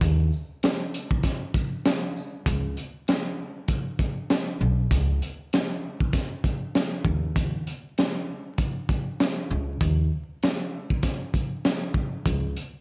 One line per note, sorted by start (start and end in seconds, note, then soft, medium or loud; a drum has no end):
0.01 0.29 D#2 loud
0.01 kick loud
0.01 closed hi-hat loud
0.32 shaker soft
0.63 snare loud
0.63 snare medium
0.63 closed hi-hat medium
0.94 closed hi-hat medium
0.94 shaker medium
1.11 kick loud
1.23 kick loud
1.23 snare soft
1.23 closed hi-hat medium
1.54 kick loud
1.54 closed hi-hat medium
1.54 shaker medium
1.85 snare loud
1.85 snare medium
1.85 closed hi-hat medium
2.17 shaker medium
2.46 2.74 C#2 loud
2.46 kick loud
2.46 closed hi-hat medium
2.77 closed hi-hat soft
3.08 snare loud
3.08 snare medium
3.08 closed hi-hat medium
3.68 kick medium
3.68 closed hi-hat medium
3.99 kick medium
3.99 closed hi-hat medium
4.30 snare loud
4.30 snare medium
4.30 closed hi-hat medium
4.61 4.89 B1 loud
4.91 5.19 C#2 loud
4.91 kick loud
4.91 closed hi-hat loud
5.22 closed hi-hat soft
5.53 snare loud
5.53 snare medium
5.53 closed hi-hat medium
6.00 kick loud
6.13 kick medium
6.13 snare soft
6.13 closed hi-hat medium
6.44 kick loud
6.44 closed hi-hat medium
6.75 snare loud
6.75 snare medium
6.75 closed hi-hat medium
7.05 7.62 D#2 loud
7.05 kick medium
7.36 kick loud
7.36 closed hi-hat medium
7.67 closed hi-hat medium
7.98 snare loud
7.98 snare medium
7.98 closed hi-hat medium
8.58 kick medium
8.58 closed hi-hat medium
8.89 kick medium
8.89 closed hi-hat medium
9.20 snare loud
9.20 snare medium
9.20 closed hi-hat medium
9.51 9.78 C#2 loud
9.81 10.09 D#2 loud
9.81 kick loud
9.81 closed hi-hat medium
10.43 snare loud
10.43 snare medium
10.43 closed hi-hat medium
10.90 kick loud
11.03 kick medium
11.03 snare soft
11.03 closed hi-hat medium
11.34 kick medium
11.34 closed hi-hat medium
11.65 snare loud
11.65 snare medium
11.65 closed hi-hat medium
11.94 kick loud
12.26 12.54 C#2 loud
12.26 kick loud
12.26 closed hi-hat loud
12.56 closed hi-hat medium